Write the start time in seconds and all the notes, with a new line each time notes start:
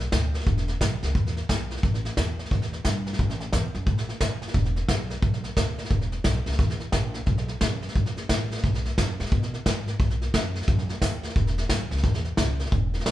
0.12 D2, kick, snare, hi-hat pedal
0.34 snare
0.40 snare
0.46 E1, kick, snare
0.57 snare
0.68 snare
0.81 B1, kick, snare, hi-hat pedal
1.03 C#2, snare
1.15 E2, kick, snare
1.26 snare
1.37 snare
1.49 B1, kick, snare, hi-hat pedal
1.71 snare
1.77 snare
1.83 A1, kick, snare
1.94 snare
2.05 snare
2.17 E2, kick, snare, hi-hat pedal
2.39 snare
2.45 snare
2.51 E2, kick, snare
2.62 snare
2.73 snare
2.85 G2, kick, snare, hi-hat pedal
3.06 snare
3.13 snare
3.19 A1, kick, snare
3.30 snare
3.40 snare
3.53 E2, kick, snare, hi-hat pedal
3.75 F#2, snare
3.86 A2, kick, snare
3.98 snare
4.09 snare
4.21 F#2, kick, snare, hi-hat pedal
4.42 snare
4.48 snare
4.53 E1, kick, snare
4.65 snare
4.76 snare
4.89 B1, kick, snare, hi-hat pedal
5.10 snare
5.22 B1, kick, snare
5.34 snare
5.44 snare
5.57 D2, kick, snare, hi-hat pedal
5.78 snare
5.85 snare
5.90 E1, kick, snare
6.01 snare
6.12 snare
6.24 B1, kick, snare, hi-hat pedal
6.46 C#2, snare
6.52 snare
6.59 E2, kick, snare
6.70 snare
6.80 snare
6.92 A#1, kick, snare, hi-hat pedal
7.14 snare
7.26 B1, kick, snare
7.38 snare
7.48 snare
7.61 F#2, kick, snare, hi-hat pedal
7.82 snare
7.89 snare
7.96 F#2, kick, snare
8.06 snare
8.17 snare
8.29 A2, kick, snare, hi-hat pedal
8.51 snare
8.58 snare
8.63 B1, kick, snare
8.74 snare
8.85 snare
8.98 F#2, kick, snare, hi-hat pedal
9.20 G#2, snare
9.26 snare
9.32 B2, kick, snare
9.43 snare
9.54 snare
9.66 G#2, kick, snare, hi-hat pedal
9.87 snare
9.99 B1, kick, snare
10.10 snare
10.22 snare
10.34 F#2, kick, snare, hi-hat pedal
10.55 snare
10.62 snare
10.68 F#2, kick, snare
10.79 snare
10.89 snare
11.02 D#2, kick, snare, hi-hat pedal
11.23 snare
11.29 snare
11.36 E1, kick, snare
11.47 snare
11.58 snare
11.69 B1, kick, snare, hi-hat pedal
11.91 C#2, snare
11.97 snare
12.03 E2, kick, snare
12.14 snare
12.25 snare
12.37 C#2, kick, snare, hi-hat pedal
12.59 snare
12.66 snare
12.72 E1, kick, snare
12.94 snare
13.00 snare
13.06 B1, snare, hi-hat pedal